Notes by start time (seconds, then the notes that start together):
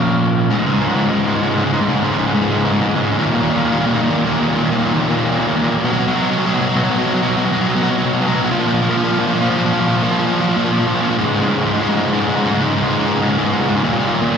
Already playing: A#2 F3 A#3 C#4 F4 A#4
0.50 C#2 G#2
0.58 C#2 G#2
0.65 C#2 G#2
0.73 C#2 G#2
0.81 C#2 G#2
0.88 C#2 G#2
0.96 C#2 G#2
1.04 C#2 G#2
1.12 C#2 G#2
1.19 C#2 G#2
1.26 C#2 G#2
1.34 C#2 G#2
1.41 C#2 G#2
1.50 C#2 G#2
1.57 C#2 G#2
1.65 C#2 G#2
1.73 C#2 G#2
1.81 C#2 G#2
1.88 C#2 G#2
1.96 C#2 G#2
2.03 C#2 G#2
2.11 C#2 G#2
2.18 C#2 G#2
2.27 C#2 G#2
2.34 C#2 G#2
2.42 C#2 G#2
2.49 C#2 G#2
2.57 C#2 G#2
2.65 C#2 G#2
2.72 C#2 G#2
2.80 C#2 G#2
2.88 C#2 G#2
2.95 C#2 G#2
3.03 C#2 G#2
3.10 C#2 G#2
3.18 D#2 A#2
3.26 D#2 A#2
3.33 D#2 A#2
3.41 D#2 A#2
3.49 D#2 A#2
3.56 D#2 A#2
3.64 D#2 A#2
3.71 D#2 A#2
3.80 D#2 A#2
3.87 D#2 A#2
3.94 D#2 A#2
4.01 D#2 A#2
4.09 D#2 A#2
4.17 D#2 A#2
4.24 D#2 A#2
4.33 D#2 A#2
4.40 D#2 A#2
4.48 D#2 A#2
4.55 D#2 A#2
4.63 D#2 A#2
4.71 D#2 A#2
4.78 D#2 A#2
4.86 D#2 A#2
4.93 D#2 A#2
5.01 D#2 A#2
5.08 D#2 A#2
5.16 D#2 A#2
5.24 D#2 A#2
5.32 D#2 A#2
5.39 D#2 A#2
5.47 D#2 A#2
5.55 D#2 A#2
5.62 D#2 A#2
5.70 D#2 A#2
5.78 D#2 A#2
5.84 B2 F#3
5.92 B2 F#3
5.99 B2 F#3
6.07 B2 F#3
6.15 B2 F#3
6.22 B2 F#3
6.30 B2 F#3
6.37 B2 F#3
6.45 B2 F#3
6.52 B2 F#3
6.61 B2 F#3
6.68 B2 F#3
6.75 B2 F#3
6.84 B2 F#3
6.90 B2 F#3
6.98 B2 F#3
7.06 B2 F#3
7.13 B2 F#3
7.22 B2 F#3
7.28 B2 F#3
7.36 B2 F#3
7.45 B2 F#3
7.51 B2 F#3
7.59 B2 F#3
7.67 B2 F#3
7.75 B2 F#3
7.82 B2 F#3
7.90 B2 F#3
7.98 B2 F#3
8.05 B2 F#3
8.13 B2 F#3
8.21 B2 F#3
8.28 B2 F#3
8.35 B2 F#3
8.42 B2 F#3
8.51 A#2 F3
8.59 A#2 F3
8.66 A#2 F3
8.74 A#2 F3
8.81 A#2 F3
8.89 A#2 F3
8.96 A#2 F3
9.04 A#2 F3
9.11 A#2 F3
9.18 A#2 F3
9.27 A#2 F3
9.34 A#2 F3
9.42 A#2 F3
9.50 A#2 F3
9.57 A#2 F3
9.66 A#2 F3
9.73 A#2 F3
9.80 A#2 F3
9.87 A#2 F3
9.95 A#2 F3
10.02 A#2 F3
10.11 A#2 F3
10.19 A#2 F3
10.26 A#2 F3
10.33 A#2 F3
10.40 A#2 F3
10.48 A#2 F3
10.56 A#2 F3
10.64 A#2 F3
10.72 A#2 F3
10.78 A#2 F3
10.87 A#2 F3
10.94 A#2 F3
11.02 A#2 F3
11.09 A#2 F3
11.18 C#2 G#2
11.25 C#2 G#2
11.33 C#2 G#2
11.41 C#2 G#2
11.48 C#2 G#2
11.56 C#2 G#2
11.63 C#2 G#2
11.71 C#2 G#2
11.78 C#2 G#2
11.86 C#2 G#2
11.93 C#2 G#2
12.01 C#2
12.05 C#2 G#2
12.12 C#2 G#2
12.21 C#2 G#2
12.28 C#2 G#2
12.36 C#2 G#2
12.44 C#2 G#2
12.51 C#2 G#2
12.60 C#2 G#2
12.66 G#2
12.71 C#2
12.76 C#2 G#2
12.83 C#2 G#2
12.90 C#2 G#2
12.98 C#2 G#2
13.05 C#2 G#2
13.14 C#2 G#2
13.22 C#2 G#2
13.30 C#2 G#2
13.38 C#2 G#2
13.45 C#2 G#2
13.53 C#2 G#2
13.61 C#2 G#2
13.69 C#2 G#2
13.76 C#2 G#2
13.83 D#2 A#2
13.92 D#2 A#2
13.99 D#2 A#2
14.06 D#2 A#2
14.14 D#2 A#2
14.21 D#2 A#2
14.29 D#2 A#2